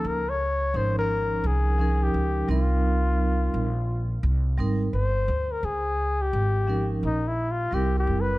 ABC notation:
X:1
M:4/4
L:1/16
Q:"Swing 16ths" 1/4=86
K:Dblyd
V:1 name="Flugelhorn"
B d3 c B3 A3 G3 F2- | F8 z4 c3 B | A3 G4 z (3E2 =E2 F2 (3G2 G2 =B2 |]
V:2 name="Vibraphone"
z4 [F,DEB]6 [F,DEB]4 [G,CEB]2- | [G,CEB]4 z6 [G,CEB]2 z4 | z6 [F,DEB]2 z4 [G,C=EB]4 |]
V:3 name="Upright bass" clef=bass
D,,4 A,,,4 C,,4 D,,2 C,,2- | C,,4 B,,,4 C,,2 A,,,2 G,,,2 =D,,2 | D,,4 A,,,4 B,,,4 C,,2 _G,,,2 |]